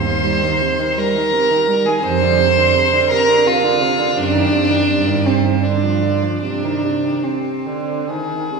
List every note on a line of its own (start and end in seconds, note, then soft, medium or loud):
0.00 0.50 D#2 medium
0.00 0.99 C5 medium
0.00 1.00 C6 medium
0.06 0.26 D#3 soft
0.24 0.44 G3 soft
0.43 0.63 D#3 soft
0.61 0.81 C3 medium
0.79 0.99 D#3 soft
0.97 1.17 G3 medium
0.97 1.88 A#4 medium
0.97 1.88 A#5 medium
1.15 1.34 D#3 soft
1.33 1.52 C3 medium
1.51 1.69 D#3 medium
1.68 1.87 G3 medium
1.85 2.03 D#3 soft
1.85 2.04 G#4 medium
1.85 2.05 G#5 medium
2.03 2.64 F2 medium
2.03 2.23 C3 medium
2.03 3.10 C5 loud
2.03 3.12 C6 medium
2.22 2.41 D3 medium
2.39 2.59 C3 medium
2.58 2.77 D3 medium
2.75 2.95 C3 medium
2.93 3.13 D3 medium
3.11 3.30 C3 medium
3.11 3.48 A#4 medium
3.11 3.45 A#5 medium
3.28 3.47 D3 medium
3.46 3.65 C3 medium
3.46 4.18 F4 medium
3.46 4.15 F5 medium
3.64 3.83 D3 medium
3.81 4.01 C3 medium
3.99 4.16 D3 medium
4.17 4.76 F#2 medium
4.17 4.36 C3 medium
4.17 5.27 D4 loud
4.17 5.28 D5 medium
4.34 4.54 D#3 medium
4.52 4.71 C3 medium
4.70 4.88 D#3 medium
4.89 5.51 G2 medium
4.89 5.09 C3 medium
5.07 5.28 D#3 medium
5.26 5.46 C3 medium
5.26 5.65 C4 medium
5.26 5.65 C5 medium
5.45 5.63 D#3 soft
5.63 6.29 G2 soft
5.63 5.85 D3 soft
5.63 6.42 D4 medium
5.63 6.42 D5 medium
5.83 6.04 F3 soft
6.03 6.24 D3 soft
6.23 6.43 F3 soft
6.42 7.10 C3 soft
6.42 6.65 C3 soft
6.42 7.25 D4 medium
6.42 7.26 D5 soft
6.64 6.86 D#3 soft
6.84 7.06 C3 soft
7.04 7.23 D#3 soft
7.24 7.68 C3 soft
7.24 8.09 C4 soft
7.24 8.10 C5 soft
7.66 8.11 D3 soft
8.10 8.53 D#3 soft
8.10 8.60 G#4 soft
8.52 8.60 C3 soft